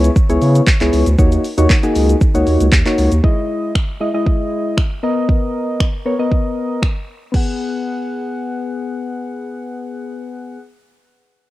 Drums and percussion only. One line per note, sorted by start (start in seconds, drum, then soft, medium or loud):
0.04 closed hi-hat medium
0.04 shaker medium
0.16 kick loud
0.16 shaker medium
0.30 closed hi-hat medium
0.30 shaker medium
0.42 open hi-hat medium
0.42 shaker soft
0.55 closed hi-hat medium
0.55 shaker medium
0.67 kick loud
0.67 clap loud
0.67 shaker medium
0.81 clap medium
0.81 closed hi-hat medium
0.81 shaker medium
0.93 open hi-hat medium
0.93 shaker medium
1.06 closed hi-hat medium
1.06 shaker medium
1.19 kick loud
1.19 shaker medium
1.32 closed hi-hat medium
1.32 shaker medium
1.44 open hi-hat medium
1.44 shaker medium
1.58 closed hi-hat medium
1.58 shaker medium
1.70 kick loud
1.70 clap loud
1.70 shaker medium
1.83 closed hi-hat soft
1.83 shaker soft
1.95 open hi-hat medium
1.95 shaker medium
2.09 closed hi-hat medium
2.09 shaker medium
2.21 kick loud
2.21 shaker medium
2.35 closed hi-hat medium
2.35 shaker medium
2.47 open hi-hat medium
2.47 shaker soft
2.60 closed hi-hat medium
2.60 shaker medium
2.72 kick loud
2.72 clap loud
2.72 shaker medium
2.86 clap medium
2.86 closed hi-hat medium
2.86 shaker medium
2.98 open hi-hat medium
2.98 shaker medium
3.12 closed hi-hat medium
3.12 shaker medium
3.24 kick loud
3.75 finger snap loud
3.75 kick loud
4.26 kick loud
4.77 finger snap loud
4.77 kick loud
5.29 kick loud
5.80 finger snap loud
5.80 kick loud
6.32 kick loud
6.83 finger snap loud
6.83 kick loud
7.34 kick medium
7.34 crash medium